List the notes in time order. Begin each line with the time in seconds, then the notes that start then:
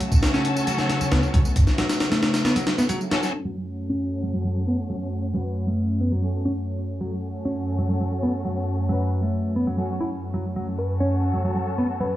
Already playing: C#3 F#3 A3
0.00 C#4 F#4 A4, closed hi-hat
0.12 kick, tambourine
0.23 snare, closed hi-hat, tambourine
0.34 C#4, snare, tambourine
0.45 closed hi-hat
0.56 tambourine
0.67 F#3, closed hi-hat, tambourine
0.78 F#3, snare, tambourine
0.89 F#3, snare, closed hi-hat
1.01 muted fingered electric bass stroke, tambourine
1.11 C#2 B3, snare, closed hi-hat, tambourine
1.23 tambourine
1.34 C#2 F#3, kick, closed hi-hat
1.45 tambourine
1.56 F#1, kick, closed hi-hat, tambourine
1.67 snare, tambourine
1.78 F#3, snare, closed hi-hat
1.89 snare, closed hi-hat, tambourine
2.00 snare, closed hi-hat, tambourine
2.12 A3, snare, closed hi-hat, tambourine
2.23 snare, closed hi-hat
2.34 snare, closed hi-hat, tambourine
2.45 B3, snare, tambourine
2.56 F#3, closed hi-hat, tambourine
2.67 snare, closed hi-hat
2.78 B3, snare, tambourine
2.89 F#3, closed hi-hat, tambourine
3.01 tambourine
3.11 F#3 C#4 F#4 A4, snare, closed hi-hat
3.23 C#4 F#4 A4, snare, tambourine
3.34 F#2 F#3 A3 C#4, tambourine
3.45 F#3, tambourine
3.56 C#4 F#4 A4
3.68 tambourine
3.79 tambourine
3.90 C#4, tambourine
4.12 tambourine
4.23 F#3, tambourine
4.34 F#3, tambourine
4.45 F#3
4.57 tambourine
4.67 B3, tambourine
4.79 tambourine
4.90 F#3
5.01 tambourine
5.12 tambourine
5.23 tambourine
5.34 F#3 C#4 F#4 B4
5.45 tambourine
5.56 tambourine
5.67 A3, tambourine
5.90 tambourine
6.01 B3, tambourine
6.12 F#3, tambourine
6.23 C#4 F#4 A4
6.34 tambourine
6.45 C#4, tambourine
6.56 tambourine
6.79 tambourine
6.90 tambourine
7.01 F#3, tambourine
7.12 C#4 F#4 A4
7.23 tambourine
7.34 tambourine
7.45 C#4, tambourine
7.68 tambourine
7.78 F#3, tambourine
7.90 F#3, tambourine
8.00 F#3
8.12 tambourine
8.23 B3, tambourine
8.34 tambourine
8.45 F#3
8.56 tambourine
8.67 tambourine
8.78 tambourine
8.89 F#3 C#4 F#4 B4
9.01 tambourine
9.12 tambourine
9.23 A3, tambourine
9.45 tambourine
9.56 B3, tambourine
9.67 F#3, tambourine
9.78 F#3 C#4 F#4 A4
9.90 tambourine
10.00 E4, tambourine
10.12 tambourine
10.34 F#3, tambourine
10.45 tambourine
10.56 F#3, tambourine
10.67 C#4 F#4 A4
10.78 B4, tambourine
10.89 tambourine
11.00 C#4 C#5, tambourine
11.23 tambourine
11.33 F#3, tambourine
11.45 F#3, tambourine
11.56 F#3
11.67 tambourine
11.78 B3, tambourine
11.89 tambourine
12.00 F#3 B4
12.12 tambourine